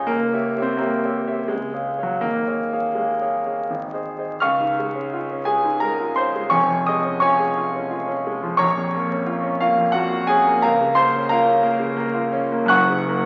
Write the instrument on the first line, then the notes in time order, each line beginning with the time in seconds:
grand piano
Already playing: C#2 C#4 D#4 F4 G#4 C#5 G#5
0.07 C#2 A#3
0.33 G4 C#5 E5
0.58 G4 C#5 E5
0.62 C4
0.77 A#3 G4 C#5 E5
1.05 G4 C#5 E5
1.26 G4 C#5 E5
1.48 C#2 G#3
1.74 G#4 C#5 F5
1.98 G#4 C#5 F5
2.03 F#3
2.21 G#1 A#3
2.47 G#4 C#5 F5
2.73 G#4 C#5 F5
2.95 G#3 G#4 C#5 F5
3.21 G#4 C#5 F5
3.46 G#4 C#5 F5
3.70 G#1
3.93 G#4 C5 D#5
4.18 G#4 C5 D#5
4.40 C#2 F5 C#6 F6
4.60 G#2
4.80 G#3
4.95 C#4
5.13 F4
5.31 C#4
5.45 G#3 G#4 G#5
5.65 G#2
5.80 G#3 A#4 A#5
6.01 F4
6.16 C#4 C5 C6
6.36 G#3
6.50 F1 F2 C#5 G#5 C#6
6.70 F3
6.86 G#3 D#5 D#6
7.04 C#4
7.20 F4 C#5 G#5 C#6
7.39 G#4
7.58 F4
7.76 C#4
7.91 F4
8.08 C#4
8.27 G#3
8.43 F3
8.57 A#1 C#5 A#5 C#6
8.78 F2
8.95 A#3
9.11 C#4
9.27 F4
9.43 C#4
9.60 A#3 F4 F5
9.78 F2
9.92 A#3 F#4 F#5
10.13 F4
10.27 C#4 G#4 G#5
10.46 A#3
10.62 C#2 A#4 F5 A#5
10.81 C#3
10.95 A#3 C5 C6
11.16 C#4
11.29 F4 A#4 F5 A#5
11.47 C#4
11.63 A#3
11.80 C#3
11.97 A#3
12.15 F4
12.33 C#4
12.52 A#3
12.66 F#1 F#2 F#5 F#6
12.70 C#6
12.90 C#3
13.08 A#3